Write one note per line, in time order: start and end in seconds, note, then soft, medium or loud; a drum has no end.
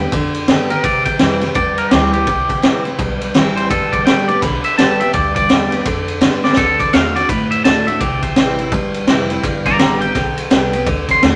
0.00 0.12 E2 loud
0.00 0.11 G2 medium
0.00 0.13 B3 soft
0.00 0.12 G4 medium
0.12 0.47 F2 medium
0.12 0.47 D3 medium
0.12 kick loud
0.12 ride medium
0.34 ride medium
0.48 0.83 G2 loud
0.48 0.70 D3 medium
0.48 0.70 G3 medium
0.48 0.70 B3 medium
0.48 0.69 G4 medium
0.48 snare loud
0.48 ride medium
0.70 0.84 B3 soft
0.70 0.84 G4 medium
0.70 0.84 A#4 loud
0.70 ride medium
0.84 1.53 C3 medium
0.84 1.19 C3 medium
0.84 1.05 D5 loud
0.84 kick loud
0.84 ride medium
1.05 1.54 G5 loud
1.05 kick medium
1.05 ride medium
1.19 1.55 F2 medium
1.19 1.41 E3 medium
1.19 1.41 G3 medium
1.19 1.42 C4 medium
1.19 1.40 E4 medium
1.19 snare loud
1.19 ride medium
1.41 1.56 C4 medium
1.41 1.55 E4 medium
1.41 snare soft
1.41 ride medium
1.55 1.91 E2 medium
1.55 2.24 G2 loud
1.55 1.77 D5 medium
1.55 kick loud
1.55 ride medium
1.78 1.91 A#4 medium
1.78 ride medium
1.91 2.26 D2 loud
1.91 2.13 E3 medium
1.91 2.13 G3 loud
1.91 2.13 C4 loud
1.91 2.12 E4 loud
1.91 2.12 G4 medium
1.91 snare loud
1.91 ride medium
2.13 2.27 C4 soft
2.13 2.27 E4 medium
2.13 2.83 G4 loud
2.13 ride medium
2.27 2.48 C2 medium
2.27 2.96 C3 medium
2.27 kick loud
2.27 ride medium
2.49 kick medium
2.49 ride medium
2.62 2.98 G1 loud
2.62 2.84 E3 medium
2.62 2.85 G3 medium
2.62 2.85 C4 medium
2.62 2.84 E4 medium
2.62 snare loud
2.62 ride medium
2.85 3.00 C4 soft
2.85 2.99 E4 medium
2.85 ride medium
2.99 3.34 B1 medium
2.99 3.68 G2 medium
2.99 kick loud
2.99 ride medium
3.21 ride medium
3.34 3.70 A1 loud
3.34 3.69 E3 loud
3.34 3.70 G3 loud
3.34 3.70 C4 loud
3.34 3.70 E4 loud
3.34 snare loud
3.34 ride medium
3.57 3.70 C5 loud
3.57 ride medium
3.70 4.05 G1 medium
3.70 4.40 G2 medium
3.70 3.92 A4 loud
3.70 kick loud
3.70 ride medium
3.92 4.05 D5 medium
3.92 kick medium
3.92 ride medium
4.06 4.42 A1 loud
4.06 4.28 D3 medium
4.06 4.29 G3 medium
4.06 4.29 B3 medium
4.06 4.29 G4 medium
4.06 4.28 G5 loud
4.06 snare loud
4.06 ride medium
4.28 4.43 B3 medium
4.28 4.42 G4 medium
4.28 4.41 D5 loud
4.28 ride medium
4.41 4.63 B1 loud
4.41 4.77 D3 medium
4.41 4.64 B4 medium
4.41 kick loud
4.41 snare soft
4.41 ride medium
4.64 4.77 E5 loud
4.64 muted upright bass stroke soft
4.64 ride medium
4.78 5.13 G1 loud
4.78 5.00 D3 medium
4.78 5.00 G3 loud
4.78 5.00 B3 loud
4.78 5.00 G4 loud
4.78 5.00 A5 loud
4.78 snare loud
4.78 ride medium
5.00 5.14 B3 medium
5.00 5.14 G4 medium
5.00 5.13 E5 loud
5.00 ride medium
5.13 5.49 D2 medium
5.13 5.83 G2 medium
5.13 5.35 D5 loud
5.13 kick loud
5.13 ride medium
5.36 6.06 D5 loud
5.36 kick medium
5.36 ride medium
5.49 5.85 E2 loud
5.49 5.71 D3 medium
5.49 5.71 G3 medium
5.49 5.71 B3 medium
5.49 5.70 G4 medium
5.49 snare loud
5.49 ride medium
5.71 5.85 B3 medium
5.71 5.85 G4 medium
5.71 snare soft
5.71 ride medium
5.86 6.21 F2 medium
5.86 6.20 D3 loud
5.86 kick loud
5.86 snare soft
5.86 ride medium
6.08 ride medium
6.21 6.56 G2 medium
6.21 6.43 D3 medium
6.21 6.43 G3 loud
6.21 6.43 B3 medium
6.21 6.42 G4 medium
6.21 snare loud
6.21 ride medium
6.43 6.57 B3 soft
6.43 6.56 G4 medium
6.43 6.57 D5 loud
6.43 snare medium
6.53 6.92 D3 medium
6.53 snare medium
6.57 6.92 D2 medium
6.57 6.79 A4 loud
6.57 kick loud
6.57 ride medium
6.80 6.93 D5 medium
6.80 kick medium
6.80 ride medium
6.93 7.28 E2 medium
6.93 7.14 D3 medium
6.93 7.15 A3 medium
6.93 7.15 D4 medium
6.93 7.15 F#4 loud
6.93 7.15 F5 loud
6.93 snare loud
6.93 ride medium
7.16 7.29 D4 medium
7.16 7.29 F#4 medium
7.16 7.29 D5 loud
7.16 snare soft
7.16 ride medium
7.29 7.64 F#2 medium
7.29 7.98 A2 medium
7.29 7.51 B4 loud
7.29 kick loud
7.29 ride medium
7.51 7.64 E5 loud
7.51 ride medium
7.64 8.00 D2 loud
7.64 7.86 D3 medium
7.64 7.86 A3 medium
7.64 7.87 D4 loud
7.64 7.86 F#4 loud
7.64 7.86 A5 loud
7.64 snare loud
7.64 ride loud
7.87 8.01 D4 soft
7.87 8.00 F#4 medium
7.87 8.00 E5 loud
7.87 ride medium
8.00 8.35 C2 medium
8.00 8.70 C3 loud
8.00 8.23 D5 loud
8.00 kick loud
8.00 ride medium
8.23 8.92 C5 loud
8.23 kick medium
8.23 ride medium
8.36 8.71 A1 loud
8.36 8.58 E3 medium
8.36 8.58 G3 medium
8.36 8.58 C4 medium
8.36 8.58 E4 medium
8.36 snare loud
8.36 ride medium
8.59 8.73 C4 medium
8.59 8.72 E4 medium
8.59 ride medium
8.72 9.07 G1 medium
8.72 9.42 G2 loud
8.72 kick loud
8.72 ride medium
8.94 ride medium
9.07 9.43 F1 loud
9.07 9.30 E3 medium
9.07 9.30 G3 medium
9.07 9.30 C4 loud
9.07 9.29 E4 loud
9.07 snare loud
9.07 ride medium
9.30 9.44 C4 soft
9.30 9.43 E4 medium
9.30 ride medium
9.44 9.78 G1 medium
9.44 10.13 G2 medium
9.44 kick loud
9.44 ride medium
9.66 9.78 D5 medium
9.66 9.79 A#5 loud
9.66 kick medium
9.66 snare soft
9.66 ride medium
9.79 10.14 A1 loud
9.79 10.01 D3 medium
9.79 10.01 G3 medium
9.79 10.01 B3 medium
9.79 10.01 G4 loud
9.79 10.00 D5 medium
9.79 10.01 A#5 loud
9.79 snare loud
9.79 ride medium
10.01 10.16 B3 soft
10.01 10.15 G4 medium
10.01 10.36 G5 loud
10.01 ride medium
10.15 10.50 B1 medium
10.15 10.49 D3 medium
10.15 kick loud
10.15 snare soft
10.15 ride medium
10.37 ride medium
10.50 10.86 C2 medium
10.50 10.72 D3 medium
10.50 10.72 G3 medium
10.50 10.73 B3 loud
10.50 10.73 G4 loud
10.50 snare loud
10.50 ride loud
10.73 10.87 B3 medium
10.73 10.86 G4 medium
10.73 ride medium
10.87 11.21 D2 medium
10.87 11.21 D3 medium
10.87 kick loud
10.87 ride medium
11.09 11.22 C6 loud
11.09 kick medium
11.09 snare soft
11.09 ride medium
11.23 11.36 E2 loud
11.23 11.36 D3 medium
11.23 11.36 A3 medium
11.23 11.36 D4 loud
11.23 11.36 F#4 loud
11.23 snare loud
11.23 ride medium